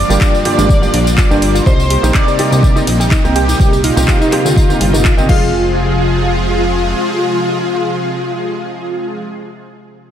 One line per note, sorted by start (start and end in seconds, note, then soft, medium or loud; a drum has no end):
0.00 1.62 D3 medium
0.00 1.62 F3 medium
0.00 5.25 G3 medium
0.00 5.25 A#3 medium
0.00 1.62 F4 medium
0.00 1.57 D5 loud
0.00 1.57 D6 loud
0.09 0.18 G1 medium
0.09 0.42 G2 medium
0.09 0.42 A#3 medium
0.09 0.42 D4 medium
0.09 0.17 F4 medium
0.09 0.42 F4 medium
0.09 0.42 G4 loud
0.09 0.17 F5 medium
0.09 tambourine medium
0.21 0.26 D4 loud
0.21 0.26 D5 medium
0.21 kick loud
0.21 clap loud
0.21 tambourine medium
0.35 tambourine soft
0.45 0.79 G2 loud
0.45 0.79 A#3 medium
0.45 0.79 D4 medium
0.45 0.53 F4 medium
0.45 0.79 F4 medium
0.45 0.79 G4 loud
0.45 0.53 F5 medium
0.45 open hi-hat loud
0.58 0.88 G#1 medium
0.58 0.62 D4 loud
0.58 0.62 D5 medium
0.58 tambourine medium
0.69 kick loud
0.69 tambourine medium
0.82 0.89 G2 medium
0.82 0.89 A#3 medium
0.82 0.89 D4 medium
0.82 0.89 F4 medium
0.82 0.89 G4 medium
0.82 0.89 F5 medium
0.82 tambourine soft
0.94 1.24 A#1 loud
0.94 0.98 D4 loud
0.94 0.98 D5 medium
0.94 open hi-hat loud
1.07 tambourine medium
1.18 1.26 F4 medium
1.18 1.26 F5 medium
1.18 kick loud
1.18 clap loud
1.18 tambourine medium
1.30 1.61 G1 medium
1.30 1.63 G2 medium
1.30 1.63 A#3 medium
1.30 1.63 D4 medium
1.30 1.35 D4 loud
1.30 1.63 F4 medium
1.30 1.63 G4 loud
1.30 1.35 D5 medium
1.30 tambourine soft
1.42 open hi-hat loud
1.55 1.62 F4 medium
1.55 1.62 F5 medium
1.55 tambourine medium
1.66 1.97 C2 loud
1.66 5.25 A#2 medium
1.66 5.25 C3 medium
1.66 1.74 C3 medium
1.66 1.74 A#3 medium
1.66 1.74 C4 medium
1.66 1.71 D#4 loud
1.66 5.25 D#4 medium
1.66 1.74 D#4 medium
1.66 1.74 G4 medium
1.66 2.10 C5 loud
1.66 1.71 D#5 medium
1.66 2.10 C6 loud
1.66 kick loud
1.66 tambourine medium
1.80 tambourine soft
1.90 1.98 G4 medium
1.90 1.98 G5 medium
1.90 open hi-hat loud
2.03 2.11 A#1 loud
2.03 2.36 C3 loud
2.03 2.36 A#3 medium
2.03 2.36 C4 medium
2.03 2.36 D#4 medium
2.03 2.07 D#4 loud
2.03 2.36 G4 loud
2.03 2.07 D#5 medium
2.03 tambourine medium
2.14 2.78 D5 loud
2.14 2.78 D6 medium
2.14 kick loud
2.14 clap loud
2.14 tambourine medium
2.27 2.35 G4 medium
2.27 2.35 G5 medium
2.27 tambourine soft
2.39 2.73 C3 loud
2.39 2.73 A#3 medium
2.39 2.73 C4 medium
2.39 2.44 D#4 loud
2.39 2.73 D#4 medium
2.39 2.73 G4 loud
2.39 2.44 D#5 medium
2.39 open hi-hat loud
2.51 2.82 C2 loud
2.51 tambourine medium
2.63 2.71 G4 medium
2.63 2.71 G5 medium
2.63 kick loud
2.63 tambourine medium
2.76 2.82 C3 medium
2.76 2.82 A#3 medium
2.76 2.82 C4 medium
2.76 2.82 D#4 medium
2.76 2.80 D#4 loud
2.76 2.82 G4 medium
2.76 2.80 D#5 medium
2.76 tambourine soft
2.87 3.18 A#1 medium
2.87 open hi-hat loud
3.00 3.07 G4 medium
3.00 3.07 G5 medium
3.00 tambourine medium
3.11 3.16 D#4 loud
3.11 3.16 D#5 medium
3.11 kick loud
3.11 clap loud
3.11 tambourine medium
3.24 3.54 C2 medium
3.24 3.57 C3 medium
3.24 3.57 A#3 medium
3.24 3.57 C4 medium
3.24 3.57 D#4 medium
3.24 3.57 G4 loud
3.24 tambourine soft
3.35 3.79 G4 medium
3.35 3.44 G4 medium
3.35 3.79 G5 medium
3.35 3.44 G5 medium
3.35 open hi-hat loud
3.48 3.53 D#4 loud
3.48 3.53 D#5 medium
3.48 tambourine medium
3.60 3.91 C2 medium
3.60 3.67 C3 medium
3.60 3.67 A#3 medium
3.60 3.67 C4 medium
3.60 3.67 D#4 medium
3.60 3.67 G4 medium
3.60 kick loud
3.60 tambourine medium
3.72 3.80 G4 medium
3.72 3.80 G5 medium
3.72 tambourine soft
3.84 3.89 D#4 loud
3.84 5.28 F4 loud
3.84 3.89 D#5 medium
3.84 5.28 F5 loud
3.84 open hi-hat loud
3.96 4.05 C2 medium
3.96 4.29 C3 loud
3.96 4.29 A#3 medium
3.96 4.29 C4 medium
3.96 4.29 D#4 medium
3.96 4.29 G4 loud
3.96 tambourine medium
4.08 4.16 G4 medium
4.08 4.16 G5 medium
4.08 kick loud
4.08 clap loud
4.08 tambourine medium
4.21 4.25 D#4 loud
4.21 4.25 D#5 medium
4.21 tambourine soft
4.32 4.66 C3 loud
4.32 4.66 A#3 medium
4.32 4.66 C4 loud
4.32 4.66 D#4 medium
4.32 4.66 G4 loud
4.32 clap soft
4.32 open hi-hat loud
4.45 4.75 D2 medium
4.45 4.52 G4 medium
4.45 4.52 G5 medium
4.45 tambourine medium
4.56 4.61 D#4 loud
4.56 4.61 D#5 medium
4.56 kick loud
4.56 tambourine medium
4.69 4.76 C3 medium
4.69 4.76 A#3 medium
4.69 4.76 C4 medium
4.69 4.76 D#4 medium
4.69 4.76 G4 loud
4.69 tambourine soft
4.81 5.11 G1 medium
4.81 4.93 G4 medium
4.81 4.93 G5 medium
4.81 open hi-hat loud
4.93 5.00 C3 medium
4.93 5.00 A#3 medium
4.93 5.00 C4 medium
4.93 5.04 D#4 loud
4.93 5.00 D#4 medium
4.93 5.00 A#4 loud
4.93 5.04 D#5 medium
4.93 tambourine medium
5.05 kick loud
5.05 clap loud
5.05 tambourine medium
5.17 5.28 G1 loud
5.17 5.24 C3 medium
5.17 5.24 A#3 medium
5.17 5.24 C4 medium
5.17 5.24 D#4 medium
5.17 5.24 G4 loud
5.17 5.28 D#5 loud
5.17 5.28 D#6 medium
5.17 tambourine soft
5.29 6.94 F1 loud
5.29 9.24 C3 medium
5.29 9.24 F3 medium
5.29 9.24 G#3 medium
5.29 9.24 C4 medium
5.29 9.24 F4 loud
5.29 9.24 F4 medium
5.29 5.74 F4 loud
5.29 9.24 G#4 medium
5.29 9.24 G#4 loud
5.29 9.24 F5 loud
5.29 kick loud
5.29 crash medium